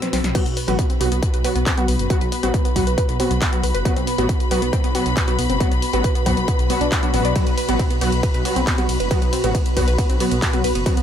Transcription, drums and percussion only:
0.02 snare, closed hi-hat
0.13 snare, open hi-hat
0.24 snare, closed hi-hat
0.35 kick, closed hi-hat, crash
0.46 closed hi-hat
0.57 open hi-hat
0.68 closed hi-hat
0.79 kick, closed hi-hat
0.90 closed hi-hat
1.01 open hi-hat
1.12 closed hi-hat
1.23 kick, closed hi-hat
1.34 closed hi-hat
1.44 open hi-hat
1.56 closed hi-hat
1.66 kick, clap, closed hi-hat
1.78 closed hi-hat
1.88 open hi-hat
1.99 closed hi-hat
2.10 kick, closed hi-hat
2.21 closed hi-hat
2.32 open hi-hat
2.43 closed hi-hat
2.54 kick, closed hi-hat
2.65 closed hi-hat
2.76 kick, open hi-hat
2.87 closed hi-hat
2.98 kick, closed hi-hat
3.09 closed hi-hat
3.20 open hi-hat
3.31 closed hi-hat
3.42 kick, clap, closed hi-hat
3.53 closed hi-hat
3.63 open hi-hat
3.75 closed hi-hat
3.85 kick, closed hi-hat
3.96 closed hi-hat
4.07 open hi-hat
4.18 closed hi-hat
4.29 kick, closed hi-hat
4.40 closed hi-hat
4.51 open hi-hat
4.62 closed hi-hat
4.73 kick, closed hi-hat
4.84 closed hi-hat
4.95 open hi-hat
5.06 closed hi-hat
5.17 kick, clap, closed hi-hat
5.28 closed hi-hat
5.39 open hi-hat
5.50 closed hi-hat
5.60 kick, closed hi-hat
5.72 closed hi-hat
5.82 open hi-hat
5.93 closed hi-hat
6.04 kick, closed hi-hat
6.15 closed hi-hat
6.26 kick, open hi-hat
6.37 closed hi-hat
6.48 kick, closed hi-hat
6.59 closed hi-hat
6.70 open hi-hat
6.81 closed hi-hat
6.92 kick, clap, closed hi-hat
7.03 closed hi-hat
7.14 open hi-hat
7.25 closed hi-hat
7.36 kick, closed hi-hat, ride
7.47 closed hi-hat, ride
7.58 open hi-hat, ride
7.69 closed hi-hat, ride
7.79 kick, closed hi-hat, ride
7.91 closed hi-hat, ride
8.01 open hi-hat, ride
8.12 closed hi-hat, ride
8.23 kick, closed hi-hat, ride
8.34 closed hi-hat, ride
8.45 open hi-hat, ride
8.56 closed hi-hat, ride
8.67 kick, clap, closed hi-hat, ride
8.78 closed hi-hat, ride
8.89 open hi-hat, ride
9.00 closed hi-hat, ride
9.11 kick, closed hi-hat, ride
9.22 closed hi-hat, ride
9.33 open hi-hat, ride
9.44 closed hi-hat, ride
9.55 kick, closed hi-hat, ride
9.66 closed hi-hat, ride
9.77 kick, open hi-hat, ride
9.88 closed hi-hat, ride
9.98 kick, closed hi-hat, ride
10.10 closed hi-hat, ride
10.20 open hi-hat, ride
10.31 closed hi-hat, ride
10.42 kick, clap, closed hi-hat, ride
10.53 closed hi-hat, ride
10.64 open hi-hat, ride
10.75 closed hi-hat, ride
10.86 kick, closed hi-hat, ride
10.97 closed hi-hat, ride

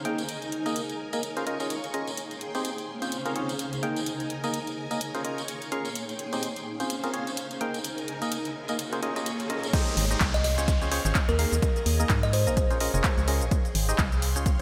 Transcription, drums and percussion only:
0.05 closed hi-hat
0.18 closed hi-hat, tambourine
0.29 closed hi-hat, tambourine
0.42 closed hi-hat, tambourine
0.52 closed hi-hat
0.66 closed hi-hat, tambourine
0.76 closed hi-hat, tambourine
0.89 closed hi-hat, tambourine
1.13 closed hi-hat, tambourine
1.23 closed hi-hat, tambourine
1.36 closed hi-hat, tambourine
1.47 closed hi-hat
1.60 closed hi-hat, tambourine
1.70 closed hi-hat, tambourine
1.84 closed hi-hat, tambourine
1.94 closed hi-hat
2.07 closed hi-hat, tambourine
2.17 closed hi-hat, tambourine
2.31 closed hi-hat, tambourine
2.41 closed hi-hat
2.55 closed hi-hat, tambourine
2.65 closed hi-hat, tambourine
2.78 closed hi-hat, tambourine
3.02 closed hi-hat, tambourine
3.12 closed hi-hat, tambourine
3.25 closed hi-hat, tambourine
3.36 closed hi-hat
3.49 closed hi-hat, tambourine
3.59 closed hi-hat, tambourine
3.73 closed hi-hat, tambourine
3.83 closed hi-hat
3.96 closed hi-hat, tambourine
4.06 closed hi-hat, tambourine
4.20 closed hi-hat, tambourine
4.30 closed hi-hat
4.44 closed hi-hat, tambourine
4.53 closed hi-hat, tambourine
4.67 closed hi-hat, tambourine
4.91 closed hi-hat, tambourine
5.01 closed hi-hat, tambourine
5.15 closed hi-hat, tambourine
5.25 closed hi-hat
5.38 closed hi-hat, tambourine
5.48 closed hi-hat, tambourine
5.61 closed hi-hat, tambourine
5.72 closed hi-hat
5.85 closed hi-hat, tambourine
5.95 closed hi-hat, tambourine
6.09 closed hi-hat, tambourine
6.19 closed hi-hat
6.33 closed hi-hat, tambourine
6.43 closed hi-hat, tambourine
6.56 closed hi-hat, tambourine
6.80 closed hi-hat, tambourine
6.90 closed hi-hat, tambourine
7.04 closed hi-hat, tambourine
7.14 closed hi-hat
7.27 closed hi-hat, tambourine
7.37 closed hi-hat, tambourine
7.51 closed hi-hat, tambourine
7.61 closed hi-hat
7.74 closed hi-hat, tambourine
7.84 closed hi-hat, tambourine
7.98 closed hi-hat, tambourine
8.08 closed hi-hat
8.22 closed hi-hat, tambourine
8.32 closed hi-hat, tambourine
8.45 closed hi-hat, tambourine
8.68 closed hi-hat, tambourine
8.79 closed hi-hat, tambourine
8.93 closed hi-hat, tambourine
9.03 closed hi-hat
9.16 closed hi-hat, tambourine
9.26 closed hi-hat, tambourine
9.40 closed hi-hat, tambourine
9.50 closed hi-hat
9.63 closed hi-hat, tambourine
9.73 kick, closed hi-hat, crash, shaker
9.87 closed hi-hat, shaker
9.97 open hi-hat
10.11 closed hi-hat, shaker
10.20 kick, clap, closed hi-hat, shaker
10.34 closed hi-hat, shaker
10.44 open hi-hat
10.58 closed hi-hat, shaker
10.68 kick, closed hi-hat, shaker
10.82 closed hi-hat, shaker
10.92 open hi-hat
11.05 closed hi-hat, shaker
11.15 kick, clap, closed hi-hat, shaker
11.29 closed hi-hat, shaker
11.39 open hi-hat
11.52 closed hi-hat, shaker
11.62 kick, closed hi-hat, shaker
11.76 closed hi-hat, shaker
11.86 open hi-hat
12.00 closed hi-hat, shaker
12.09 kick, clap, closed hi-hat, shaker
12.23 closed hi-hat, shaker
12.33 open hi-hat
12.47 closed hi-hat, shaker
12.57 kick, closed hi-hat, shaker
12.70 closed hi-hat, shaker
12.80 open hi-hat
12.94 closed hi-hat, shaker
13.04 kick, clap, closed hi-hat, shaker
13.18 closed hi-hat, shaker
13.28 open hi-hat
13.41 closed hi-hat, shaker
13.51 kick, closed hi-hat, shaker
13.65 closed hi-hat, shaker
13.75 open hi-hat
13.89 closed hi-hat, shaker
13.98 kick, clap, closed hi-hat, shaker
14.12 closed hi-hat, shaker
14.22 open hi-hat
14.36 closed hi-hat, shaker
14.46 kick, closed hi-hat, shaker

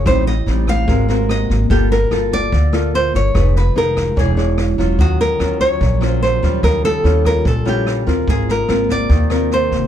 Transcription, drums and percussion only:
0.06 kick, cross-stick, snare
0.26 snare
0.47 snare
0.67 kick, cross-stick, snare
0.88 kick, snare
1.09 snare
1.29 cross-stick, snare
1.50 kick, snare
1.70 kick, snare
1.91 snare
2.11 cross-stick, snare
2.32 kick, snare
2.52 kick, snare
2.73 cross-stick, snare
2.94 snare
3.14 kick, snare
3.35 kick, cross-stick, snare
3.56 snare
3.76 snare
3.97 kick, cross-stick, snare
4.17 kick, snare
4.38 snare
4.58 cross-stick, snare
4.78 kick, snare
4.99 kick, snare
5.20 snare
5.40 cross-stick, snare
5.60 kick, snare
5.81 kick, snare
6.02 cross-stick, snare
6.22 snare
6.43 kick, snare
6.63 kick, cross-stick, snare
6.84 snare
7.05 snare
7.25 kick, cross-stick, snare
7.45 kick, snare
7.66 snare
7.87 cross-stick, snare
8.07 kick, snare
8.28 kick, snare
8.48 snare
8.69 cross-stick, snare
8.89 kick, snare
9.10 kick, snare
9.30 cross-stick, snare
9.51 snare
9.71 kick, snare

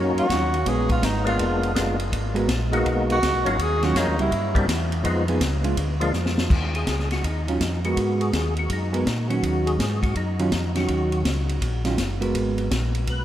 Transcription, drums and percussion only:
0.18 ride
0.30 kick, snare, hi-hat pedal, ride
0.54 ride
0.66 kick, ride
0.89 kick, ride
1.02 kick, snare, hi-hat pedal, ride
1.27 ride
1.39 kick, ride
1.63 ride
1.76 kick, snare, hi-hat pedal, ride
2.00 ride
2.12 kick, ride
2.36 ride
2.48 kick, snare, hi-hat pedal, ride
2.73 ride
2.86 kick, ride
3.10 ride
3.22 kick, snare, hi-hat pedal, ride
3.46 ride
3.59 kick, ride
3.82 snare, ride
3.95 kick, snare, hi-hat pedal, ride
4.19 ride
4.31 kick, ride
4.55 kick, ride
4.68 kick, snare, hi-hat pedal, ride
4.92 ride
5.04 kick, ride
5.28 ride
5.41 kick, snare, hi-hat pedal, ride
5.64 ride
5.77 kick, ride
6.01 ride
6.13 snare, hi-hat pedal
6.26 snare
6.38 snare
6.50 kick, crash
6.75 ride
6.87 kick, snare, hi-hat pedal, ride
6.99 snare
7.11 snare, ride
7.24 kick, ride
7.48 ride
7.60 kick, snare, hi-hat pedal, ride
7.84 ride
7.97 kick, ride
8.21 ride
8.33 kick, snare, hi-hat pedal, ride
8.57 ride
8.70 kick, ride
8.94 ride
9.06 kick, snare, hi-hat pedal, ride
9.30 ride
9.43 kick, ride
9.67 ride
9.79 kick, snare, hi-hat pedal, ride
10.03 kick, ride
10.15 kick, ride
10.39 ride
10.52 kick, snare, hi-hat pedal, ride
10.75 snare, ride
10.88 kick, ride
11.12 ride
11.25 kick, snare, hi-hat pedal, ride
11.49 ride
11.61 kick, ride
11.85 snare, ride
11.98 kick, snare, hi-hat pedal, ride
12.22 ride
12.34 kick, ride
12.58 ride
12.71 kick, snare, hi-hat pedal, ride
12.95 ride
13.07 kick, ride

